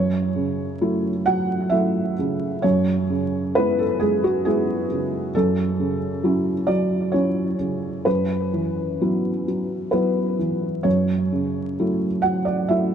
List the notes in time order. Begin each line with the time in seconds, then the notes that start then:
Already playing: F#2 C#5
0.36 C#3
0.81 F#3 A3 E4
1.26 F#3 F#5
1.70 F#3 A3 E4 E5
2.19 C#3
2.62 F#2 C#5
3.10 C#3
3.55 G#3 B3 E4 B4
3.79 A4
4.00 G#3 G#4
4.24 F#4
4.45 G#3 B3 E4 G#4
4.91 C#3
5.35 F#2 A4
5.79 C#3
6.24 F#3 C#4 E4
6.67 F#3 D5
7.12 F#3 C#4 E4 C#5
7.59 C#3
8.05 F#2 B4
8.54 E3
9.01 F#3 B3 E4
9.48 F#3
9.91 F#3 B3 E4 B4
10.39 E3
10.83 F#2 C#5
11.32 C#3
11.79 F#3 A3 E4
12.22 F#3 F#5
12.45 D5
12.69 F#3 A3 E4 E5